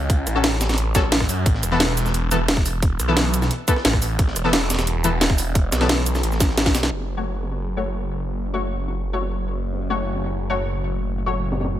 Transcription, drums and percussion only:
0.10 kick, closed hi-hat
0.27 cross-stick, closed hi-hat, cabasa
0.44 snare, closed hi-hat
0.61 snare, closed hi-hat, cabasa
0.69 cross-stick, snare, closed hi-hat, cabasa
0.74 snare, closed hi-hat
0.78 closed hi-hat
0.95 kick, snare, closed hi-hat, cabasa
1.03 cross-stick
1.12 snare, closed hi-hat
1.20 kick, cross-stick, snare
1.29 closed hi-hat, open hi-hat, cabasa
1.46 kick, closed hi-hat
1.55 snare
1.63 cross-stick, closed hi-hat, cabasa
1.72 snare
1.80 snare, closed hi-hat
1.97 snare, closed hi-hat, cabasa
2.06 snare, cabasa
2.14 closed hi-hat
2.31 closed hi-hat, cabasa
2.48 snare, closed hi-hat
2.57 kick
2.65 closed hi-hat, open hi-hat, cabasa
2.82 kick, closed hi-hat
3.00 cross-stick, closed hi-hat, cabasa
3.17 snare, closed hi-hat
3.34 closed hi-hat, cabasa
3.42 cross-stick, snare, cabasa
3.51 closed hi-hat
3.68 kick, closed hi-hat, cabasa
3.76 cross-stick, snare
3.85 snare, closed hi-hat
3.93 kick, cross-stick
4.02 closed hi-hat, open hi-hat, cabasa
4.19 kick, closed hi-hat
4.28 snare
4.36 cross-stick, closed hi-hat, cabasa
4.45 snare
4.53 snare, closed hi-hat
4.70 snare, closed hi-hat, cabasa
4.74 snare, closed hi-hat
4.79 snare, closed hi-hat, cabasa
4.87 closed hi-hat
5.04 closed hi-hat, cabasa
5.21 snare, closed hi-hat
5.30 kick
5.38 closed hi-hat, open hi-hat, cabasa
5.55 kick, closed hi-hat
5.72 cross-stick, snare, closed hi-hat, cabasa
5.81 snare, closed hi-hat
5.89 snare, closed hi-hat
6.06 closed hi-hat, cabasa
6.15 cross-stick, snare, cabasa
6.23 closed hi-hat
6.32 snare, cabasa
6.40 kick, snare, closed hi-hat, cabasa
6.49 snare
6.58 snare, closed hi-hat
6.66 kick, snare
6.75 snare, closed hi-hat, open hi-hat, cabasa
6.83 snare, closed hi-hat
7.00 snare
7.09 closed hi-hat
7.17 snare
7.43 snare
7.51 snare
7.60 closed hi-hat
7.94 closed hi-hat
8.11 closed hi-hat, open hi-hat
8.28 closed hi-hat
8.45 closed hi-hat
8.62 closed hi-hat
8.79 closed hi-hat
8.88 snare
8.96 closed hi-hat
9.22 snare
9.30 closed hi-hat
9.64 closed hi-hat
9.73 snare
9.81 closed hi-hat
9.90 snare
10.16 snare, closed hi-hat
10.24 snare
10.33 closed hi-hat
10.84 closed hi-hat, open hi-hat
11.01 closed hi-hat
11.18 closed hi-hat
11.52 snare, closed hi-hat
11.60 snare, closed hi-hat
11.65 snare, closed hi-hat
11.69 closed hi-hat

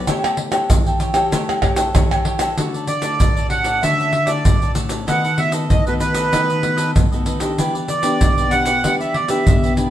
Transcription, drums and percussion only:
0.07 pandeiro, tamborim, shaker, surdo
0.24 pandeiro, tamborim, shaker
0.37 pandeiro
0.52 pandeiro, tamborim, shaker
0.70 pandeiro, shaker, surdo
0.86 pandeiro, shaker
1.00 pandeiro, shaker
1.14 pandeiro, tamborim, shaker
1.32 pandeiro, shaker, surdo
1.49 pandeiro, tamborim, shaker
1.62 pandeiro, tamborim, surdo
1.76 pandeiro, shaker
1.95 pandeiro, tamborim, shaker, surdo
2.11 pandeiro, tamborim, shaker
2.25 pandeiro
2.39 pandeiro, tamborim, shaker
2.58 pandeiro, shaker, surdo
2.74 pandeiro, shaker
2.87 pandeiro, shaker
3.02 pandeiro, shaker
3.20 pandeiro, shaker, surdo
3.37 pandeiro, shaker
3.50 pandeiro
3.64 pandeiro, shaker
3.83 pandeiro, shaker, surdo
4.00 pandeiro, shaker
4.13 pandeiro
4.27 pandeiro, shaker
4.45 pandeiro, shaker, surdo
4.62 pandeiro, shaker
4.75 pandeiro, shaker
4.89 pandeiro, shaker
5.08 pandeiro, shaker, surdo
5.25 pandeiro, shaker
5.38 pandeiro
5.52 pandeiro, shaker
5.70 pandeiro, shaker, surdo
5.87 pandeiro, shaker
6.00 pandeiro, shaker
6.14 pandeiro, shaker
6.33 pandeiro, shaker, surdo
6.50 pandeiro, shaker
6.63 pandeiro
6.78 pandeiro, shaker
6.96 pandeiro, shaker, surdo
7.12 pandeiro, shaker
7.26 pandeiro, shaker
7.40 pandeiro, shaker
7.58 pandeiro, shaker, surdo
7.75 pandeiro, shaker
7.88 pandeiro, shaker
8.03 pandeiro, shaker
8.21 pandeiro, shaker, surdo
8.38 pandeiro, shaker
8.51 pandeiro, shaker
8.66 pandeiro, shaker
8.84 pandeiro, shaker, surdo
9.01 pandeiro, shaker
9.14 pandeiro
9.28 pandeiro, shaker
9.47 pandeiro, shaker, surdo
9.64 pandeiro, shaker
9.77 pandeiro, shaker

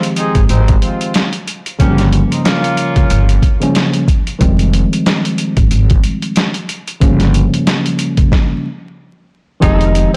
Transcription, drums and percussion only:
0.03 closed hi-hat
0.16 closed hi-hat
0.35 kick, closed hi-hat
0.49 closed hi-hat
0.68 kick, closed hi-hat
0.82 closed hi-hat
1.01 closed hi-hat
1.14 snare, closed hi-hat
1.33 closed hi-hat
1.48 closed hi-hat
1.66 closed hi-hat
1.80 kick, closed hi-hat
1.98 snare, closed hi-hat
2.13 closed hi-hat
2.32 closed hi-hat
2.45 snare, closed hi-hat
2.64 closed hi-hat
2.77 closed hi-hat
2.96 kick, closed hi-hat
3.10 closed hi-hat
3.29 closed hi-hat
3.42 kick, closed hi-hat
3.62 closed hi-hat
3.75 snare, closed hi-hat
3.94 closed hi-hat
4.08 kick, closed hi-hat
4.27 closed hi-hat
4.41 kick, closed hi-hat
4.59 closed hi-hat
4.73 closed hi-hat
4.93 closed hi-hat
5.06 snare, closed hi-hat
5.25 closed hi-hat
5.38 closed hi-hat
5.57 kick, closed hi-hat
5.71 closed hi-hat
5.90 kick, closed hi-hat
6.04 closed hi-hat
6.22 closed hi-hat
6.36 snare, closed hi-hat
6.54 closed hi-hat
6.69 closed hi-hat
6.88 closed hi-hat
7.01 kick, closed hi-hat
7.20 snare, closed hi-hat
7.34 closed hi-hat
7.54 closed hi-hat
7.67 snare, closed hi-hat
7.86 closed hi-hat
7.99 closed hi-hat
8.17 kick, closed hi-hat
8.32 kick, snare
9.62 kick, closed hi-hat
9.81 closed hi-hat
9.95 closed hi-hat

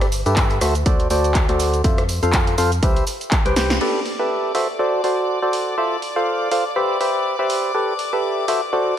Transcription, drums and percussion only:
0.01 cross-stick, closed hi-hat, tambourine
0.12 open hi-hat, tambourine, shaker
0.26 closed hi-hat, tambourine, shaker
0.36 kick, clap, closed hi-hat, tambourine, shaker
0.50 closed hi-hat, tambourine
0.61 cross-stick, open hi-hat, tambourine, shaker
0.75 closed hi-hat, tambourine, shaker
0.86 kick, closed hi-hat, tambourine, shaker
0.99 closed hi-hat, tambourine
1.10 open hi-hat, tambourine, shaker
1.24 closed hi-hat, tambourine, shaker
1.35 kick, clap, closed hi-hat, tambourine, shaker
1.49 closed hi-hat, tambourine
1.60 open hi-hat, tambourine, shaker
1.74 closed hi-hat, tambourine, shaker
1.84 kick, closed hi-hat, tambourine, shaker
1.98 cross-stick, closed hi-hat, tambourine
2.09 open hi-hat, tambourine, shaker
2.23 closed hi-hat, tambourine, shaker
2.32 kick, clap, closed hi-hat, tambourine, shaker
2.47 closed hi-hat, tambourine
2.58 open hi-hat, tambourine, shaker
2.72 closed hi-hat, tambourine, shaker
2.83 kick, closed hi-hat, tambourine, shaker
2.96 closed hi-hat, tambourine
3.07 open hi-hat, tambourine, shaker
3.21 closed hi-hat, tambourine, shaker
3.31 kick, clap, closed hi-hat, tambourine, shaker
3.45 closed hi-hat, tambourine
3.56 snare, open hi-hat, tambourine, shaker
3.70 snare, closed hi-hat, tambourine, shaker
3.81 crash
4.06 open hi-hat
4.55 open hi-hat
5.04 open hi-hat
5.53 open hi-hat
6.02 open hi-hat
6.51 open hi-hat
7.01 open hi-hat
7.50 open hi-hat
7.99 open hi-hat
8.48 open hi-hat

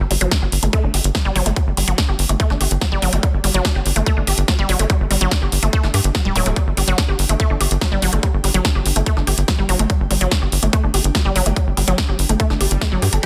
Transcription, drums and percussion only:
0.11 open hi-hat
0.21 closed hi-hat
0.31 kick, snare, closed hi-hat
0.52 open hi-hat
0.63 closed hi-hat
0.73 kick, closed hi-hat
0.94 open hi-hat
1.04 closed hi-hat
1.15 kick, snare, closed hi-hat
1.36 open hi-hat
1.46 closed hi-hat
1.56 kick, closed hi-hat
1.77 open hi-hat
1.88 closed hi-hat
1.98 kick, snare, closed hi-hat
2.19 open hi-hat
2.29 closed hi-hat
2.40 kick, closed hi-hat
2.50 snare
2.61 open hi-hat
2.71 closed hi-hat
2.81 kick, snare, closed hi-hat
3.02 open hi-hat
3.13 closed hi-hat
3.23 kick, closed hi-hat
3.44 open hi-hat
3.54 closed hi-hat
3.65 kick, snare, closed hi-hat
3.86 open hi-hat
3.96 closed hi-hat
4.06 kick, closed hi-hat
4.27 open hi-hat
4.38 closed hi-hat
4.48 kick, snare, closed hi-hat
4.69 open hi-hat
4.79 closed hi-hat
4.90 kick, closed hi-hat
5.11 open hi-hat
5.21 closed hi-hat
5.31 kick, snare, closed hi-hat
5.52 open hi-hat
5.63 closed hi-hat
5.73 kick, closed hi-hat
5.83 snare
5.94 open hi-hat
6.04 closed hi-hat
6.15 kick, snare, closed hi-hat
6.36 open hi-hat
6.46 closed hi-hat
6.56 kick, closed hi-hat
6.77 open hi-hat
6.88 closed hi-hat
6.98 kick, snare, closed hi-hat
7.19 open hi-hat
7.29 closed hi-hat
7.40 kick, closed hi-hat
7.61 open hi-hat
7.71 closed hi-hat
7.81 kick, snare, closed hi-hat
8.02 open hi-hat
8.13 closed hi-hat
8.23 kick, closed hi-hat
8.44 open hi-hat
8.54 closed hi-hat
8.65 kick, snare, closed hi-hat
8.86 open hi-hat
8.96 closed hi-hat
9.06 kick, closed hi-hat
9.17 snare
9.27 open hi-hat
9.38 closed hi-hat
9.48 kick, snare, closed hi-hat
9.69 open hi-hat
9.79 closed hi-hat
9.90 kick, closed hi-hat
10.11 open hi-hat
10.21 closed hi-hat
10.31 kick, snare, closed hi-hat
10.52 open hi-hat
10.63 closed hi-hat
10.73 kick, closed hi-hat
10.94 open hi-hat
11.04 closed hi-hat
11.15 kick, snare, closed hi-hat
11.36 open hi-hat
11.46 closed hi-hat
11.56 kick, closed hi-hat
11.77 open hi-hat
11.88 closed hi-hat
11.98 kick, snare, closed hi-hat
12.19 open hi-hat
12.29 closed hi-hat
12.40 kick, closed hi-hat
12.50 snare
12.61 open hi-hat
12.71 closed hi-hat
12.81 kick, snare, closed hi-hat
13.02 open hi-hat
13.13 closed hi-hat

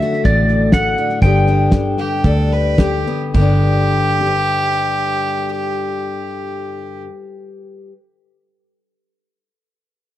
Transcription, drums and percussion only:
0.01 snare
0.13 snare
0.24 kick, snare
0.48 snare
0.72 kick, snare, hi-hat pedal
0.97 snare
1.09 snare
1.21 kick, snare
1.46 snare
1.72 kick, snare, hi-hat pedal
1.98 snare
2.24 kick, snare
2.51 snare
2.78 kick, snare, hi-hat pedal
3.06 snare
3.34 kick, crash

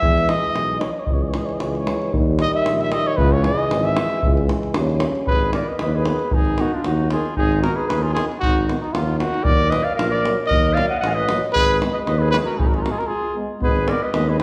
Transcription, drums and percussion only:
0.02 davul low
0.18 davul high
0.29 davul high
0.44 davul high
0.56 davul high
0.70 davul high
0.81 davul high
1.07 davul low
1.34 davul high
1.49 davul high
1.60 davul high
1.75 davul high
1.87 davul high
2.02 davul high
2.14 davul low
2.39 davul high
2.53 davul high
2.66 davul high
2.81 davul high
2.92 davul high
3.06 davul high
3.18 davul low
3.44 davul high
3.59 davul high
3.71 davul high
3.85 davul high
3.97 davul high
4.11 davul high
4.23 davul low
4.37 davul high
4.49 davul high
4.63 davul high
4.74 davul high
4.90 davul high
5.00 davul high
5.15 davul high
5.27 davul low
5.41 davul high
5.53 davul high
5.79 davul high
6.05 davul high
6.19 davul high
6.31 davul low
6.45 davul high
6.58 davul high
6.84 davul high
7.11 davul high
7.25 davul high
7.37 davul low
7.52 davul high
7.64 davul high
7.90 davul high
8.17 davul high
8.32 davul high
8.43 davul low
8.58 davul high
8.69 davul high
8.84 davul high
8.95 davul high
9.09 davul high
9.20 davul high
9.34 davul high
9.45 davul low
9.61 davul high
9.72 davul high
9.99 davul high
10.25 davul high
10.40 davul high
10.51 davul low
10.65 davul high
10.77 davul high
11.04 davul high
11.29 davul high
11.44 davul high
11.56 davul low
11.70 davul high
11.82 davul high
12.07 davul high
12.34 davul high
12.60 davul low
12.74 davul high
12.86 davul high
13.01 davul high
13.62 davul low
13.76 davul high
13.88 davul high
14.14 davul high
14.40 davul high

